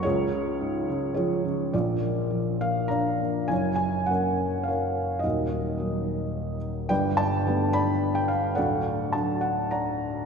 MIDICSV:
0, 0, Header, 1, 2, 480
1, 0, Start_track
1, 0, Tempo, 561798
1, 42, Time_signature, 3, 2, 24, 8
1, 1483, Tempo, 589391
1, 3883, Tempo, 555556
1, 7243, Tempo, 580271
1, 8636, End_track
2, 0, Start_track
2, 0, Title_t, "Felt piano"
2, 0, Program_c, 0, 0
2, 0, Control_c, 0, 64, 127
2, 24, Note_on_c, 0, 73, 92
2, 39, Note_on_c, 0, 65, 66
2, 42, Note_on_c, 0, 68, 69
2, 51, Control_c, 0, 64, 0
2, 52, Note_on_c, 0, 37, 66
2, 213, Control_c, 0, 64, 127
2, 282, Note_on_c, 0, 49, 55
2, 519, Note_on_c, 0, 44, 54
2, 752, Note_off_c, 0, 49, 0
2, 765, Note_on_c, 0, 49, 55
2, 950, Note_off_c, 0, 73, 0
2, 957, Note_off_c, 0, 65, 0
2, 959, Note_off_c, 0, 68, 0
2, 977, Note_on_c, 0, 73, 69
2, 992, Note_on_c, 0, 68, 53
2, 996, Note_on_c, 0, 65, 48
2, 999, Note_on_c, 0, 53, 57
2, 1225, Note_off_c, 0, 49, 0
2, 1238, Note_on_c, 0, 49, 52
2, 1448, Note_off_c, 0, 68, 0
2, 1449, Note_off_c, 0, 65, 0
2, 1454, Note_off_c, 0, 37, 0
2, 1457, Note_off_c, 0, 44, 0
2, 1471, Note_off_c, 0, 53, 0
2, 1475, Note_off_c, 0, 49, 0
2, 1482, Note_on_c, 0, 74, 76
2, 1485, Note_on_c, 0, 46, 59
2, 1486, Note_on_c, 0, 34, 57
2, 1489, Note_off_c, 0, 73, 0
2, 1492, Note_on_c, 0, 65, 54
2, 1492, Note_on_c, 0, 70, 53
2, 1494, Control_c, 0, 64, 0
2, 1650, Control_c, 0, 64, 127
2, 1714, Note_on_c, 0, 58, 44
2, 1946, Note_on_c, 0, 53, 49
2, 2180, Note_off_c, 0, 58, 0
2, 2192, Note_on_c, 0, 58, 45
2, 2195, Note_on_c, 0, 77, 81
2, 2406, Note_off_c, 0, 74, 0
2, 2411, Note_off_c, 0, 65, 0
2, 2411, Note_off_c, 0, 70, 0
2, 2415, Note_on_c, 0, 82, 75
2, 2426, Note_off_c, 0, 77, 0
2, 2429, Note_on_c, 0, 62, 51
2, 2439, Note_on_c, 0, 77, 53
2, 2440, Note_on_c, 0, 74, 55
2, 2669, Note_off_c, 0, 58, 0
2, 2681, Note_on_c, 0, 58, 45
2, 2895, Note_off_c, 0, 53, 0
2, 2896, Note_off_c, 0, 74, 0
2, 2896, Note_off_c, 0, 77, 0
2, 2897, Note_off_c, 0, 46, 0
2, 2898, Note_off_c, 0, 34, 0
2, 2902, Note_on_c, 0, 80, 79
2, 2909, Note_off_c, 0, 62, 0
2, 2914, Note_on_c, 0, 30, 51
2, 2915, Note_on_c, 0, 42, 52
2, 2920, Note_off_c, 0, 58, 0
2, 2932, Note_off_c, 0, 82, 0
2, 2932, Note_on_c, 0, 73, 60
2, 2938, Control_c, 0, 64, 0
2, 3080, Control_c, 0, 64, 127
2, 3116, Note_off_c, 0, 80, 0
2, 3128, Note_on_c, 0, 80, 78
2, 3378, Note_on_c, 0, 78, 78
2, 3386, Note_on_c, 0, 54, 39
2, 3391, Note_on_c, 0, 58, 36
2, 3394, Note_on_c, 0, 61, 45
2, 3397, Note_off_c, 0, 80, 0
2, 3404, Note_off_c, 0, 73, 0
2, 3416, Note_on_c, 0, 73, 55
2, 3419, Note_on_c, 0, 70, 54
2, 3844, Note_on_c, 0, 77, 70
2, 3867, Note_off_c, 0, 70, 0
2, 3874, Note_off_c, 0, 73, 0
2, 3879, Note_on_c, 0, 70, 52
2, 3881, Note_off_c, 0, 78, 0
2, 3887, Note_on_c, 0, 73, 51
2, 4324, Note_on_c, 0, 75, 73
2, 4326, Note_off_c, 0, 54, 0
2, 4327, Note_off_c, 0, 30, 0
2, 4328, Note_off_c, 0, 42, 0
2, 4329, Note_off_c, 0, 58, 0
2, 4331, Note_off_c, 0, 61, 0
2, 4333, Note_off_c, 0, 70, 0
2, 4338, Note_off_c, 0, 73, 0
2, 4358, Note_on_c, 0, 39, 62
2, 4363, Note_on_c, 0, 66, 51
2, 4363, Note_on_c, 0, 70, 51
2, 4365, Note_off_c, 0, 77, 0
2, 4366, Note_on_c, 0, 27, 57
2, 4379, Control_c, 0, 64, 0
2, 4537, Control_c, 0, 64, 127
2, 4831, Note_on_c, 0, 54, 44
2, 4834, Note_on_c, 0, 58, 41
2, 4844, Note_on_c, 0, 63, 48
2, 5500, Note_off_c, 0, 75, 0
2, 5520, Note_off_c, 0, 66, 0
2, 5520, Note_off_c, 0, 70, 0
2, 5760, Note_off_c, 0, 39, 0
2, 5764, Note_off_c, 0, 27, 0
2, 5764, Note_off_c, 0, 54, 0
2, 5766, Note_off_c, 0, 58, 0
2, 5771, Note_off_c, 0, 63, 0
2, 5791, Note_on_c, 0, 79, 90
2, 5795, Note_on_c, 0, 74, 72
2, 5797, Note_on_c, 0, 71, 70
2, 5801, Note_on_c, 0, 31, 61
2, 5801, Note_on_c, 0, 43, 62
2, 5813, Control_c, 0, 64, 0
2, 5949, Control_c, 0, 64, 127
2, 6022, Note_off_c, 0, 74, 0
2, 6032, Note_on_c, 0, 81, 99
2, 6035, Note_on_c, 0, 74, 74
2, 6047, Note_off_c, 0, 79, 0
2, 6289, Note_on_c, 0, 55, 50
2, 6289, Note_on_c, 0, 57, 45
2, 6294, Note_on_c, 0, 59, 57
2, 6491, Note_off_c, 0, 71, 0
2, 6511, Note_off_c, 0, 74, 0
2, 6518, Note_on_c, 0, 83, 101
2, 6524, Note_on_c, 0, 74, 72
2, 6535, Note_off_c, 0, 81, 0
2, 6878, Note_on_c, 0, 79, 87
2, 6890, Note_off_c, 0, 83, 0
2, 6993, Note_on_c, 0, 77, 78
2, 7004, Note_off_c, 0, 79, 0
2, 7207, Note_off_c, 0, 74, 0
2, 7209, Note_off_c, 0, 31, 0
2, 7209, Note_off_c, 0, 43, 0
2, 7215, Note_off_c, 0, 55, 0
2, 7215, Note_off_c, 0, 57, 0
2, 7218, Note_off_c, 0, 59, 0
2, 7225, Note_on_c, 0, 78, 80
2, 7232, Note_on_c, 0, 69, 63
2, 7234, Note_on_c, 0, 74, 63
2, 7245, Note_off_c, 0, 77, 0
2, 7252, Note_on_c, 0, 26, 56
2, 7253, Control_c, 0, 64, 0
2, 7255, Note_on_c, 0, 38, 60
2, 7421, Control_c, 0, 64, 127
2, 7701, Note_on_c, 0, 81, 81
2, 7719, Note_off_c, 0, 78, 0
2, 7719, Note_on_c, 0, 54, 42
2, 7721, Note_on_c, 0, 57, 38
2, 7723, Note_on_c, 0, 62, 47
2, 7915, Note_off_c, 0, 69, 0
2, 7916, Note_off_c, 0, 74, 0
2, 7931, Note_off_c, 0, 81, 0
2, 7936, Note_on_c, 0, 78, 75
2, 8171, Note_off_c, 0, 78, 0
2, 8184, Note_on_c, 0, 82, 72
2, 8194, Note_on_c, 0, 74, 51
2, 8194, Note_on_c, 0, 78, 50
2, 8636, Note_off_c, 0, 26, 0
2, 8636, Note_off_c, 0, 38, 0
2, 8636, Note_off_c, 0, 54, 0
2, 8636, Note_off_c, 0, 57, 0
2, 8636, Note_off_c, 0, 62, 0
2, 8636, Note_off_c, 0, 74, 0
2, 8636, Note_off_c, 0, 78, 0
2, 8636, Note_off_c, 0, 82, 0
2, 8636, End_track
0, 0, End_of_file